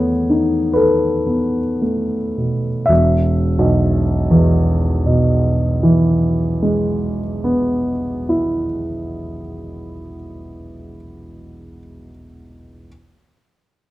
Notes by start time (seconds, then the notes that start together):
Already playing: E2 A3 B3 C#5
0.30 D#4
0.73 A4 B4
1.27 B3
1.82 A3
2.37 B2
2.86 E1 E5
3.59 B1
4.31 E2
5.06 B2
5.83 E3
6.63 G#3
7.44 B3
8.29 E4